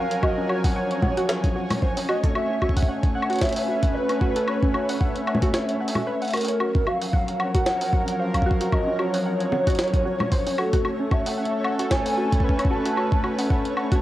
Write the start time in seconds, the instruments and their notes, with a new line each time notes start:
Already playing: analog synth pad F3 F#3 A#4 G#5, synth texture C#4 C#5, soft synth lead F5
0.11 synth arpeggio sound A#4, closed hi-hat
0.23 synth arpeggio sound F#4, soft synth lead D#5, kick, high woodblock
0.38 synth arpeggio sound C#4
0.49 synth arpeggio sound F#4, soft synth lead C#5, high woodblock
0.64 synth arpeggio sound F#5, kick, open hi-hat
0.76 synth arpeggio sound F#5
0.91 closed hi-hat
1.02 synth arpeggio sound F#5, kick, low conga
1.17 synth arpeggio sound F#4, closed hi-hat
1.29 synth arpeggio sound C#5, snare
1.44 kick, closed hi-hat
1.56 synth arpeggio sound F#4
1.71 open hi-hat, low conga, high woodblock
1.82 synth arpeggio sound C5, kick
1.97 synth arpeggio sound C#4, open hi-hat
2.09 analog synth pad A3, synth arpeggio sound F#4, soft synth lead D#5, high woodblock
2.24 synth arpeggio sound A4, kick, closed hi-hat
2.35 synth arpeggio sound F#4, soft synth lead E5, high woodblock
2.46 analog synth pad C#4
2.50 synth arpeggio sound C#4
2.62 synth arpeggio sound F#4, kick, high woodblock
2.69 kick
2.77 synth arpeggio sound F#5, kick, open hi-hat
2.83 kick
2.88 synth arpeggio sound F#5
3.03 kick, closed hi-hat
3.15 synth arpeggio sound F#5, soft synth lead F#5
3.21 analog synth pad B4, high woodblock
3.30 synth arpeggio sound F#4, closed hi-hat
3.33 closed hi-hat
3.36 closed hi-hat
3.39 snare, closed hi-hat
3.41 synth arpeggio sound C#5, soft synth lead E5, kick, closed hi-hat
3.45 closed hi-hat
3.49 closed hi-hat
3.53 closed hi-hat, open hi-hat
3.68 synth arpeggio sound F#4
3.83 kick, closed hi-hat
3.95 soft synth lead B4, synth arpeggio sound B4
4.09 synth arpeggio sound C#4, closed hi-hat, high woodblock
4.21 synth arpeggio sound F#4, kick
4.36 synth arpeggio sound A4, closed hi-hat
4.48 synth arpeggio sound F#4, soft synth lead C#5, high woodblock
4.63 synth arpeggio sound C#4, kick
4.74 synth arpeggio sound F#4, high woodblock
4.89 synth arpeggio sound F#5, open hi-hat
5.01 soft synth lead E5, synth arpeggio sound F#5, kick
5.16 closed hi-hat
5.27 synth arpeggio sound F#5, high woodblock
5.35 low conga
5.42 synth arpeggio sound F#4, kick, closed hi-hat
5.54 synth arpeggio sound C#5, snare
5.69 closed hi-hat
5.81 synth arpeggio sound F#5
5.88 open hi-hat
5.95 synth arpeggio sound F#4, low conga, high woodblock
6.07 synth arpeggio sound B4
6.22 synth arpeggio sound F#5, open hi-hat
6.25 open hi-hat
6.28 open hi-hat
6.31 open hi-hat
6.34 synth arpeggio sound F#4, soft synth lead A#4, open hi-hat, high woodblock
6.37 open hi-hat
6.41 open hi-hat
6.45 synth arpeggio sound C#5, closed hi-hat, open hi-hat
6.60 analog synth pad F#3, synth texture C#4 C#5, synth arpeggio sound F#4, high woodblock
6.74 analog synth pad F3, synth arpeggio sound C#4, kick
6.87 synth arpeggio sound F#4, soft synth lead F5, high woodblock
7.01 synth arpeggio sound F#5, open hi-hat
7.09 analog synth pad A#4
7.13 synth arpeggio sound F#5, kick
7.28 closed hi-hat
7.40 soft synth lead F#5, synth arpeggio sound F#5, high woodblock
7.55 synth arpeggio sound F#4, kick, closed hi-hat
7.66 synth arpeggio sound C#5, snare
7.81 open hi-hat
7.93 synth arpeggio sound F#4, kick
8.08 closed hi-hat
8.19 synth arpeggio sound C5, soft synth lead F5
8.34 synth arpeggio sound C#4, kick, closed hi-hat, high woodblock
8.42 kick
8.46 synth arpeggio sound F#4
8.51 kick
8.61 synth arpeggio sound F#4, closed hi-hat
8.72 synth arpeggio sound F#4, soft synth lead D#5, kick, high woodblock
8.87 synth arpeggio sound C#4
8.99 synth arpeggio sound F#4, soft synth lead C#5, high woodblock
9.14 synth arpeggio sound F#5, open hi-hat
9.26 synth arpeggio sound F#5
9.40 closed hi-hat
9.52 synth arpeggio sound F#5, low conga
9.67 synth arpeggio sound F#4, kick, closed hi-hat
9.70 closed hi-hat
9.75 snare, closed hi-hat
9.79 synth arpeggio sound C#5, closed hi-hat
9.84 closed hi-hat
9.88 closed hi-hat
9.93 kick, closed hi-hat
10.05 synth arpeggio sound F#4
10.20 low conga, high woodblock
10.32 synth arpeggio sound C5, kick, open hi-hat
10.47 synth arpeggio sound C#4, open hi-hat
10.58 analog synth pad A3, synth arpeggio sound F#4, soft synth lead A4, high woodblock
10.73 synth arpeggio sound F#4, kick, closed hi-hat
10.85 analog synth pad C#4 A4, synth arpeggio sound F#4, high woodblock
11.00 synth arpeggio sound C#4
11.11 synth arpeggio sound F#4, soft synth lead E5, kick, high woodblock
11.26 synth arpeggio sound F#5, open hi-hat
11.38 synth arpeggio sound F#5
11.45 closed hi-hat
11.64 synth arpeggio sound F#5, soft synth lead F#5, high woodblock
11.71 analog synth pad B4
11.79 synth arpeggio sound F#4, closed hi-hat
11.91 synth arpeggio sound C#5, soft synth lead G#5, kick, snare
12.06 open hi-hat
12.18 synth arpeggio sound F#4
12.32 kick, closed hi-hat
12.40 synth arpeggio sound B4, kick
12.49 kick
12.59 synth arpeggio sound C#4, closed hi-hat, high woodblock
12.65 kick
12.71 synth arpeggio sound F#4, soft synth lead A5
12.86 synth arpeggio sound F#4, closed hi-hat
12.97 synth arpeggio sound F#4, high woodblock
13.12 synth arpeggio sound C#4, kick
13.24 synth arpeggio sound F#4, high woodblock
13.39 synth arpeggio sound F#5, open hi-hat
13.50 synth arpeggio sound F#5, kick
13.65 closed hi-hat
13.77 synth arpeggio sound F#5, high woodblock
13.92 synth arpeggio sound F#4, kick, closed hi-hat